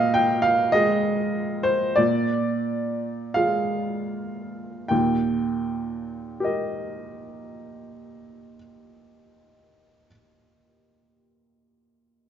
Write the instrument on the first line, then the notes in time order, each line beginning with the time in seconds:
upright piano
Already playing: A#2 D#5 F5
0.14 G5
0.42 F5
0.72 G#3 F4 D#5
1.63 C5
1.96 A#2 D5
3.34 G#3 F4 F5
4.88 D#2 A#2 G5
6.40 G4 A#4
6.45 D#5